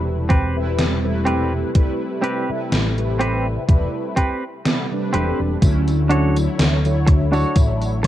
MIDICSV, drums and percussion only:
0, 0, Header, 1, 2, 480
1, 0, Start_track
1, 0, Key_signature, 2, "major"
1, 0, Tempo, 967742
1, 870, Time_signature, 4, 2, 24, 8
1, 4004, End_track
2, 0, Start_track
2, 0, Title_t, "Drums"
2, 148, Note_on_c, 9, 42, 60
2, 149, Note_on_c, 9, 36, 92
2, 198, Note_off_c, 9, 42, 0
2, 199, Note_off_c, 9, 36, 0
2, 389, Note_on_c, 9, 38, 106
2, 389, Note_on_c, 9, 42, 72
2, 439, Note_off_c, 9, 38, 0
2, 439, Note_off_c, 9, 42, 0
2, 628, Note_on_c, 9, 42, 64
2, 678, Note_off_c, 9, 42, 0
2, 868, Note_on_c, 9, 42, 76
2, 869, Note_on_c, 9, 36, 108
2, 918, Note_off_c, 9, 42, 0
2, 919, Note_off_c, 9, 36, 0
2, 1109, Note_on_c, 9, 42, 63
2, 1159, Note_off_c, 9, 42, 0
2, 1350, Note_on_c, 9, 38, 110
2, 1350, Note_on_c, 9, 42, 75
2, 1399, Note_off_c, 9, 38, 0
2, 1399, Note_off_c, 9, 42, 0
2, 1477, Note_on_c, 9, 42, 36
2, 1527, Note_off_c, 9, 42, 0
2, 1590, Note_on_c, 9, 42, 65
2, 1640, Note_off_c, 9, 42, 0
2, 1829, Note_on_c, 9, 36, 114
2, 1830, Note_on_c, 9, 42, 76
2, 1878, Note_off_c, 9, 36, 0
2, 1880, Note_off_c, 9, 42, 0
2, 2069, Note_on_c, 9, 36, 57
2, 2069, Note_on_c, 9, 42, 65
2, 2118, Note_off_c, 9, 36, 0
2, 2118, Note_off_c, 9, 42, 0
2, 2309, Note_on_c, 9, 38, 111
2, 2309, Note_on_c, 9, 42, 76
2, 2359, Note_off_c, 9, 38, 0
2, 2359, Note_off_c, 9, 42, 0
2, 2549, Note_on_c, 9, 42, 67
2, 2598, Note_off_c, 9, 42, 0
2, 2789, Note_on_c, 9, 36, 114
2, 2790, Note_on_c, 9, 42, 83
2, 2790, Note_on_c, 9, 54, 47
2, 2839, Note_off_c, 9, 36, 0
2, 2840, Note_off_c, 9, 42, 0
2, 2840, Note_off_c, 9, 54, 0
2, 2916, Note_on_c, 9, 42, 39
2, 2916, Note_on_c, 9, 54, 29
2, 2966, Note_off_c, 9, 42, 0
2, 2966, Note_off_c, 9, 54, 0
2, 3030, Note_on_c, 9, 42, 80
2, 3079, Note_off_c, 9, 42, 0
2, 3157, Note_on_c, 9, 42, 58
2, 3157, Note_on_c, 9, 54, 59
2, 3207, Note_off_c, 9, 42, 0
2, 3207, Note_off_c, 9, 54, 0
2, 3270, Note_on_c, 9, 38, 119
2, 3270, Note_on_c, 9, 42, 82
2, 3270, Note_on_c, 9, 54, 47
2, 3320, Note_off_c, 9, 38, 0
2, 3320, Note_off_c, 9, 42, 0
2, 3320, Note_off_c, 9, 54, 0
2, 3398, Note_on_c, 9, 42, 37
2, 3398, Note_on_c, 9, 54, 29
2, 3447, Note_off_c, 9, 42, 0
2, 3447, Note_off_c, 9, 54, 0
2, 3510, Note_on_c, 9, 36, 105
2, 3510, Note_on_c, 9, 42, 84
2, 3559, Note_off_c, 9, 36, 0
2, 3559, Note_off_c, 9, 42, 0
2, 3637, Note_on_c, 9, 42, 56
2, 3637, Note_on_c, 9, 54, 59
2, 3687, Note_off_c, 9, 42, 0
2, 3687, Note_off_c, 9, 54, 0
2, 3749, Note_on_c, 9, 42, 80
2, 3749, Note_on_c, 9, 54, 47
2, 3750, Note_on_c, 9, 36, 118
2, 3798, Note_off_c, 9, 42, 0
2, 3798, Note_off_c, 9, 54, 0
2, 3800, Note_off_c, 9, 36, 0
2, 3877, Note_on_c, 9, 42, 37
2, 3877, Note_on_c, 9, 54, 29
2, 3927, Note_off_c, 9, 42, 0
2, 3927, Note_off_c, 9, 54, 0
2, 4004, End_track
0, 0, End_of_file